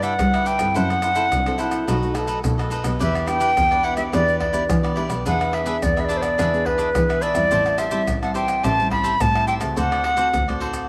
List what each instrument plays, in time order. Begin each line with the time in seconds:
Already playing: double bass G2, nylon-string guitar G3 D4 E4 B4
0.02 cavaquinho D4 G4 B4 E5, flute F#5, pandeiro, maracas
0.19 nylon-string guitar D3 D4 E4 B4, double bass G3, pandeiro, tamborim, maracas, surdo
0.33 cavaquinho G4 B4 E5, pandeiro, tamborim, maracas
0.45 cavaquinho D4 G4 B4 E5, flute G5, pandeiro, maracas
0.58 double bass G2, nylon-string guitar C4 E4 A4, cavaquinho G4 B4 E5, pandeiro, tamborim, maracas
0.74 double bass F#2, nylon-string guitar F#3, cavaquinho E4 A4 C5 F#5, flute F#5, pandeiro, maracas, surdo
0.90 cavaquinho A4 C5 F#5, pandeiro, tamborim, maracas
1.02 cavaquinho E4 A4 C5 F#5, pandeiro, tamborim, maracas
1.15 nylon-string guitar C4 E4 A4, cavaquinho E4 A4 C5 F#5, pandeiro, maracas
1.32 double bass C2, nylon-string guitar F#3, trombone D4, pandeiro, tamborim, maracas, surdo
1.46 nylon-string guitar C4 E4 A4, cavaquinho A4 C5 F#5, pandeiro, tamborim, maracas
1.58 cavaquinho E4 A4 C5 F#5, trombone E4, pandeiro, maracas
1.71 pandeiro, tamborim, maracas
1.87 double bass B1, nylon-string guitar B2 F#3 A3 D#4, cavaquinho D#4 A4 B4 D#5, trombone F#4, pandeiro, tamborim, maracas, surdo
2.03 nylon-string guitar F#3 A3 D#4, pandeiro, maracas
2.14 cavaquinho D#4 A4 B4 D#5, trombone A4, pandeiro, tamborim, maracas
2.27 cavaquinho D#4 A4 B4 D#5, pandeiro, maracas
2.44 nylon-string guitar F#2 F#3 A3 D#4, double bass B2, trombone A4, pandeiro, tamborim, maracas, surdo
2.58 cavaquinho A4 B4 D#5, pandeiro, tamborim, maracas
2.70 cavaquinho D#4 A4 B4 D#5, pandeiro, maracas
2.83 double bass B1, nylon-string guitar B3 D4 G4, cavaquinho A4 B4 D#5, pandeiro, tamborim, maracas
2.99 double bass E2, nylon-string guitar E3, cavaquinho E4 G4 B4 D5, flute E5, pandeiro, maracas, surdo
3.14 cavaquinho G4 B4 D5, pandeiro, tamborim, maracas
3.26 nylon-string guitar B3 D4 G4, cavaquinho E4 G4 B4 D5, flute G5, pandeiro, tamborim, maracas
3.40 cavaquinho E4 G4 B4 D5, pandeiro, maracas
3.57 double bass E2, nylon-string guitar B2, pandeiro, tamborim, maracas, surdo
3.71 nylon-string guitar B3 D4 G4, cavaquinho G4 B4 D5, pandeiro, tamborim, maracas
3.83 cavaquinho E4 G4 B4 D5, flute F#5, pandeiro
3.97 nylon-string guitar B3 D4 G4, flute E5, pandeiro, tamborim, maracas
4.12 double bass E2, nylon-string guitar E3 B3 D4 G4, cavaquinho E4 G4 B4 D5, flute D5, pandeiro, tamborim, maracas, surdo
4.28 pandeiro, maracas
4.40 cavaquinho E4 G4 B4 D5, flute D5, pandeiro, tamborim, surdo
4.53 nylon-string guitar B3 D4 G4, cavaquinho E4 G4 B4 D5, pandeiro, maracas
4.70 nylon-string guitar B2, double bass E3, pandeiro, tamborim, maracas, surdo
4.83 cavaquinho G4 B4 D5, pandeiro, tamborim, maracas
4.96 nylon-string guitar B3 D4 G4, cavaquinho E4 G4 B4 D5, pandeiro
5.09 double bass B1, cavaquinho G4 B4 D5, pandeiro, tamborim, maracas
5.25 double bass E2, nylon-string guitar E3 B3 D4 G#4, cavaquinho D4 G#4 B4 E5, flute F#5, pandeiro, maracas, surdo
5.40 cavaquinho G#4 B4 E5, pandeiro, tamborim, maracas
5.52 cavaquinho D4 G#4 B4 E5, flute E5, pandeiro, tamborim
5.66 nylon-string guitar B3 D4 G#4, cavaquinho D4 G#4 B4 E5, pandeiro, maracas
5.82 double bass E2, nylon-string guitar B2, flute D5, pandeiro, tamborim, maracas, surdo
5.96 nylon-string guitar B3 D4 G#4, cavaquinho G#4 B4 E5, flute E5, pandeiro, tamborim, maracas
6.05 cavaquinho D4, flute D5
6.09 cavaquinho G#4 B4 E5, pandeiro, maracas
6.17 flute C5
6.22 flute D5, pandeiro, tamborim, maracas
6.38 double bass E2, nylon-string guitar E3, cavaquinho D4 G#4 B4 E5, pandeiro, tamborim, maracas, surdo
6.53 nylon-string guitar B3 D4 G#4, pandeiro, maracas
6.65 cavaquinho D4 G#4 B4 E5, flute B4, pandeiro, tamborim, surdo
6.78 cavaquinho D4 G#4 B4 E5, pandeiro, maracas
6.95 nylon-string guitar B2 B3 D4 G#4, double bass E3, pandeiro, tamborim, maracas, surdo
7.09 cavaquinho G#4 B4 E5, pandeiro, tamborim, maracas
7.21 cavaquinho D4 G#4 B4 E5, flute D5, pandeiro, maracas
7.34 double bass E2, nylon-string guitar G3 C4 E4, cavaquinho G#4 B4 E5, pandeiro, tamborim, maracas
7.51 double bass A1, nylon-string guitar A2, cavaquinho G4 C5 E5 A5, pandeiro, maracas, surdo
7.66 cavaquinho C5 E5 A5, pandeiro, tamborim, maracas
7.78 cavaquinho G4 C5 E5 A5, flute E5, pandeiro, tamborim, maracas
7.91 nylon-string guitar G3 C4 E4, cavaquinho G4 C5 E5 A5, pandeiro, maracas
8.07 double bass A1, nylon-string guitar E3, pandeiro, tamborim, maracas, surdo
8.23 nylon-string guitar G3 C4 E4, cavaquinho C5 E5 A5, flute F#5, pandeiro, tamborim, maracas
8.34 cavaquinho G4 C5 E5 A5, flute G5, pandeiro, maracas
8.48 pandeiro, tamborim, maracas
8.63 double bass A1, nylon-string guitar A2, cavaquinho G4 C5 E5 A5, flute A5, pandeiro, tamborim, maracas, surdo
8.79 nylon-string guitar G3 C4 E4, pandeiro, maracas
8.90 cavaquinho G4 C5 E5 A5, flute B5, pandeiro, tamborim, surdo
9.03 cavaquinho G4 C5 E5 A5, pandeiro, maracas
9.21 double bass A2, nylon-string guitar E3 G3 C4 E4, flute A5, pandeiro, tamborim, maracas, surdo
9.35 cavaquinho C5 E5 A5, pandeiro, tamborim, maracas
9.47 cavaquinho G4 C5 E5 A5, flute G5, pandeiro, maracas
9.60 double bass C#2, nylon-string guitar A3 C4 F#4, cavaquinho C5 E5 A5, pandeiro, tamborim, maracas
9.76 double bass D2, nylon-string guitar D3, cavaquinho F#4 A4 C5 D5, flute F#5, pandeiro, maracas, surdo
9.91 cavaquinho A4 C5 D5, pandeiro, tamborim, maracas
10.03 cavaquinho F#4 A4 C5 D5, pandeiro, tamborim
10.16 nylon-string guitar A3 C4 F#4, cavaquinho F#4 A4 C5 D5, pandeiro, maracas
10.34 double bass D2, nylon-string guitar A2, pandeiro, tamborim, maracas, surdo
10.48 nylon-string guitar A3 C4 F#4, cavaquinho A4 C5 D5, pandeiro, tamborim, maracas
10.60 cavaquinho F#4 A4 C5 D5, pandeiro
10.74 pandeiro, tamborim, maracas